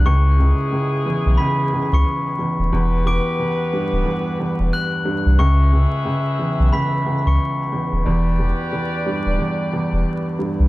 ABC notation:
X:1
M:4/4
L:1/16
Q:"Swing 16ths" 1/4=90
K:Elyd
V:1 name="Glockenspiel"
[c'c'']8 [bb']3 [c'c''] z4 | z2 [=d'=d'']6- [d'd''] z3 [f'f'']2 z2 | [c'c'']8 [bb']3 [c'c''] z4 | z16 |]
V:2 name="Saxophone section"
[G,EG]12- [G,EG]2 z2 | [B,=GB]12- [B,GB]2 z2 | [GBe]12- [GBe]2 z2 | [=GB=d]12- [GBd]2 z2 |]
V:3 name="Grand piano" clef=bass
C,,2 C,,2 C,,2 E,,2 C,,2 C,,4 E,,2 | E,,2 E,,2 E,,2 =G,,2 E,,2 E,,4 G,,2 | C,,2 C,,2 C,,2 E,,2 C,,2 C,,4 E,,2 | E,,2 E,,2 E,,2 =G,,2 E,,2 E,,4 G,,2 |]
V:4 name="Sub bass" clef=bass
C,,3 z4 B,,, z3 C,, z3 D,,, | E,,,3 z4 =D,,, z3 E,,, z3 ^B,,, | C,,3 z4 B,,, z3 C,, z3 D,,, | E,,,3 z4 =D,,, z3 E,,, z3 ^B,,, |]